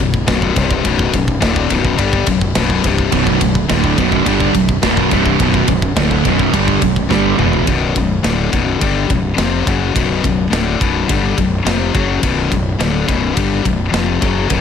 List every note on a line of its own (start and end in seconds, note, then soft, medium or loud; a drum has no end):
0.00 0.26 B0 medium
0.00 0.22 B1 medium
0.00 0.22 F#2 medium
0.14 kick medium
0.27 0.54 B0 medium
0.27 0.55 B1 medium
0.27 0.55 F#2 medium
0.27 0.55 B2 loud
0.27 kick medium
0.27 snare loud
0.27 ride loud
0.42 kick medium
0.55 0.82 C1 loud
0.55 0.83 C2 loud
0.55 0.83 G2 loud
0.55 0.84 C3 loud
0.55 kick medium
0.55 ride medium
0.71 kick medium
0.85 1.11 B0 loud
0.85 1.12 B1 medium
0.85 1.12 F#2 loud
0.85 1.12 B2 loud
0.85 kick medium
0.85 ride loud
0.99 kick medium
1.13 1.40 B0 medium
1.13 1.36 B1 medium
1.13 1.36 F#2 medium
1.13 kick medium
1.13 ride medium
1.28 kick medium
1.41 1.68 D1 loud
1.41 1.69 D2 medium
1.41 1.69 A2 loud
1.41 1.69 D3 loud
1.41 kick medium
1.41 snare loud
1.41 ride loud
1.56 kick medium
1.70 1.97 B0 loud
1.70 1.97 B1 loud
1.70 1.98 F#2 loud
1.70 1.98 B2 loud
1.70 kick medium
1.70 ride medium
1.85 kick medium
1.98 2.25 G1 loud
1.98 2.26 G2 medium
1.98 2.26 D3 medium
1.98 2.26 G3 loud
1.98 kick medium
1.98 ride loud
2.13 kick medium
2.27 2.53 B0 medium
2.27 2.50 B1 medium
2.27 2.50 F#2 medium
2.27 kick medium
2.27 ride medium
2.41 kick medium
2.55 2.82 B0 loud
2.55 2.83 B1 loud
2.55 2.83 F#2 loud
2.55 2.83 B2 loud
2.55 kick medium
2.55 snare loud
2.55 ride loud
2.70 kick medium
2.84 3.10 C1 loud
2.84 3.11 C2 loud
2.84 3.12 G2 loud
2.84 3.12 C3 loud
2.84 kick medium
2.84 ride medium
2.98 kick medium
3.12 3.39 B0 loud
3.12 3.40 B1 loud
3.12 3.40 F#2 loud
3.12 3.40 B2 loud
3.12 kick medium
3.12 ride loud
3.27 kick medium
3.41 3.67 B0 medium
3.41 3.64 B1 medium
3.41 3.64 F#2 medium
3.41 kick medium
3.41 ride medium
3.55 kick medium
3.69 3.96 D1 loud
3.69 3.96 D2 medium
3.69 3.97 A2 loud
3.69 3.97 D3 loud
3.69 kick medium
3.69 snare loud
3.69 ride loud
3.84 kick medium
3.97 4.24 B0 medium
3.97 4.25 B1 loud
3.97 4.25 F#2 loud
3.97 4.25 B2 loud
3.97 kick medium
3.97 ride medium
4.12 kick medium
4.25 4.52 G1 loud
4.25 4.53 G2 medium
4.25 4.53 D3 loud
4.25 4.53 G3 loud
4.25 kick medium
4.25 ride loud
4.40 kick medium
4.54 4.81 B0 medium
4.54 4.77 B1 medium
4.54 4.77 F#2 medium
4.54 kick medium
4.54 ride medium
4.69 kick medium
4.82 5.09 B0 loud
4.82 5.10 B1 medium
4.82 5.10 F#2 loud
4.82 5.11 B2 loud
4.82 kick medium
4.82 snare loud
4.82 ride loud
4.97 kick medium
5.11 5.38 C1 loud
5.11 5.39 C2 loud
5.11 5.39 G2 loud
5.11 5.39 C3 loud
5.11 kick medium
5.11 ride medium
5.26 kick medium
5.40 5.66 B0 loud
5.40 5.67 B1 medium
5.40 5.67 F#2 loud
5.40 5.68 B2 loud
5.40 kick medium
5.40 ride loud
5.54 kick medium
5.68 5.94 B0 medium
5.68 5.91 B1 medium
5.68 5.91 F#2 medium
5.68 kick medium
5.68 ride medium
5.82 kick medium
5.96 6.23 D1 medium
5.96 6.24 D2 loud
5.96 6.24 A2 loud
5.96 6.24 D3 medium
5.96 kick medium
5.96 snare loud
5.96 ride loud
6.11 kick medium
6.24 6.51 B0 medium
6.24 6.52 B1 loud
6.24 6.53 F#2 loud
6.24 6.53 B2 loud
6.24 kick medium
6.24 ride medium
6.39 kick medium
6.53 6.80 G1 medium
6.53 6.81 G2 loud
6.53 6.81 D3 medium
6.53 6.81 G3 loud
6.53 kick medium
6.53 ride loud
6.68 kick medium
6.81 7.08 B0 medium
6.81 7.04 B1 medium
6.81 7.04 F#2 medium
6.81 kick medium
6.81 ride medium
6.96 kick medium
7.09 7.37 G1 loud
7.09 7.37 G2 medium
7.09 7.37 D3 medium
7.09 7.38 G3 loud
7.09 kick medium
7.09 snare medium
7.37 7.65 E1 medium
7.37 7.66 E2 loud
7.37 7.66 B2 loud
7.37 7.66 E3 loud
7.37 mid tom loud
7.53 floor tom medium
7.67 7.94 B0 medium
7.67 7.94 B1 medium
7.67 7.94 F#2 medium
7.67 7.95 B2 loud
7.67 kick loud
7.67 ride medium
7.95 8.22 B0 medium
7.95 8.18 B1 medium
7.95 8.18 F#2 medium
7.95 kick medium
7.95 ride medium
8.23 8.50 D1 medium
8.23 8.51 D2 medium
8.23 8.51 A2 medium
8.23 8.51 D3 loud
8.23 snare loud
8.23 ride medium
8.51 8.79 B0 medium
8.51 8.79 B1 medium
8.51 8.80 F#2 loud
8.51 8.80 B2 loud
8.51 kick medium
8.51 ride medium
8.80 9.08 G1 medium
8.80 9.08 G2 medium
8.80 9.08 D3 medium
8.80 9.09 G3 medium
8.80 kick loud
8.80 ride medium
9.09 9.36 B0 medium
9.09 9.32 B1 medium
9.09 9.32 F#2 medium
9.09 kick medium
9.09 ride medium
9.36 9.64 F1 loud
9.36 9.65 F2 medium
9.36 9.65 C3 medium
9.36 9.65 F3 medium
9.36 snare loud
9.36 ride loud
9.66 9.93 F#1 medium
9.66 9.93 F#2 medium
9.66 9.94 C#3 loud
9.66 9.94 F#3 loud
9.66 kick loud
9.66 ride medium
9.94 10.22 B0 medium
9.94 10.22 B1 medium
9.94 10.22 F#2 medium
9.94 10.22 B2 loud
9.94 kick loud
9.94 ride medium
10.23 10.50 B0 medium
10.23 10.46 B1 medium
10.23 10.46 F#2 medium
10.23 kick medium
10.23 ride medium
10.50 10.78 D1 medium
10.50 10.79 D2 medium
10.50 10.79 A2 medium
10.50 10.79 D3 loud
10.50 snare loud
10.50 ride medium
10.80 11.07 B0 medium
10.80 11.08 B1 loud
10.80 11.08 F#2 loud
10.80 11.08 B2 loud
10.80 kick loud
10.80 ride medium
11.09 11.35 G1 medium
11.09 11.36 G2 medium
11.09 11.36 D3 medium
11.09 11.37 G3 medium
11.09 kick loud
11.09 ride medium
11.37 11.64 B0 medium
11.37 11.60 B1 medium
11.37 11.60 F#2 medium
11.37 kick medium
11.37 ride medium
11.65 11.92 F1 loud
11.65 11.93 F2 medium
11.65 11.93 C3 medium
11.65 11.93 F3 medium
11.65 snare loud
11.65 ride loud
11.94 12.21 F#1 loud
11.94 12.21 F#2 medium
11.94 12.22 C#3 loud
11.94 12.22 F#3 loud
11.94 kick loud
11.94 ride medium
12.22 12.49 B0 medium
12.22 12.49 B1 medium
12.22 12.50 F#2 medium
12.22 12.50 B2 loud
12.22 kick loud
12.22 ride loud
12.51 12.78 B0 medium
12.51 12.73 B1 medium
12.51 12.74 F#2 medium
12.51 kick medium
12.51 ride medium
12.79 13.06 D1 medium
12.79 13.07 D2 medium
12.79 13.07 A2 medium
12.79 13.07 D3 loud
12.79 snare loud
12.79 ride loud
13.07 13.35 B0 medium
13.07 13.34 B1 loud
13.07 13.34 F#2 loud
13.07 13.35 B2 loud
13.07 kick medium
13.07 ride medium
13.34 13.63 G1 medium
13.34 13.63 G2 medium
13.34 13.63 D3 loud
13.34 13.63 G3 medium
13.34 kick loud
13.34 ride loud
13.63 13.91 B0 medium
13.63 13.87 B1 medium
13.63 13.87 F#2 medium
13.63 kick medium
13.63 ride medium
13.92 14.19 F1 medium
13.92 14.20 F2 medium
13.92 14.20 C3 medium
13.92 14.21 F3 medium
13.92 snare loud
13.92 ride medium
14.20 14.48 F#1 medium
14.20 14.48 F#2 medium
14.20 14.49 C#3 medium
14.20 14.49 F#3 loud
14.20 kick loud
14.20 ride medium
14.49 14.61 B0 loud
14.49 14.61 B1 medium
14.49 14.61 F#2 loud
14.49 14.61 B2 loud
14.49 kick loud
14.49 ride medium